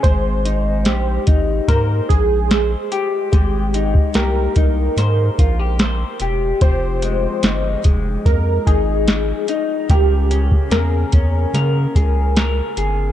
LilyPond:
<<
  \new Staff \with { instrumentName = "Synth keys" } { \time 4/4 \key aes \major \tempo 4 = 73 c''4. r8 bes'8 aes'4 r8 | g'4 bes'2~ bes'8 r8 | c''4. r8 bes'8 aes'4 r8 | g'4 bes'2~ bes'8 r8 | }
  \new Staff \with { instrumentName = "Clean electric guitar" } { \time 4/4 \key aes \major <aes c''>8 ees'8 g'8 ees'8 c''4 c''8 g'8 | <aes c''>8 ees'8 g'8 ees'8 c''8 f'16 g'16 c''8 g'8 | <f g'>8 aes8 ees'8 aes4 ees'4 ees'8 | <des bes'>8 des'8 aes'8 des'8 bes'8 aes'8 bes'8 aes'8 | }
  \new Staff \with { instrumentName = "Analog synth bass" } { \clef bass \time 4/4 \key aes \major aes,,4 bes,,8 aes,,8 aes,8 bes,,4 r8 | aes,,4 c,8 c,8 aes,8 bes,,4 fes,,8 | f,,4 g,,8 f,,8 f,8 aes,,4 r8 | des,4 fes,8 fes,8 des8 des,4 g,,8 | }
  \new DrumStaff \with { instrumentName = "Drums" } \drummode { \time 4/4 <hh bd>8 hh8 <hh sn>8 <hh bd>8 <hh bd sn>8 <hh bd>8 <hh sn>8 hh8 | <hh bd>8 hh16 bd16 <hh sn>8 <hh bd>8 <hh sn>8 <hh bd>8 <hh sn>8 hh8 | <hh bd>8 hh8 <hh sn>8 <hh bd>8 <hh bd sn>8 <hh bd>8 <hh sn>8 hh8 | <hh bd>8 hh16 bd16 <hh sn>8 <hh bd>8 <hh sn>8 <hh bd>8 <hh sn>8 hh8 | }
>>